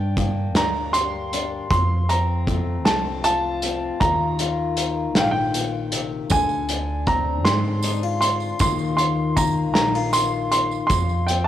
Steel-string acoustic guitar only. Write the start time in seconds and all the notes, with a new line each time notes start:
Already playing: G2 D4
0.18 A#3
0.57 D4
0.96 G4
1.34 D4
1.71 F2
2.10 C4
2.48 A3
2.87 C4
3.25 F4
3.64 C4
4.01 D#2 D#3 A#3 F4
4.41 F4
4.79 A#3
5.16 G#2
5.55 A#2
5.93 C3
6.31 D3
6.70 D4
7.09 C4
7.47 D4
7.84 D#4
8.03 F4
8.22 D4
8.60 D#2 D#3 A#3 F4
8.98 F4
9.38 A#3
9.77 D#4
9.95 F4
10.14 F4
10.53 F4
10.91 F2
11.30 C4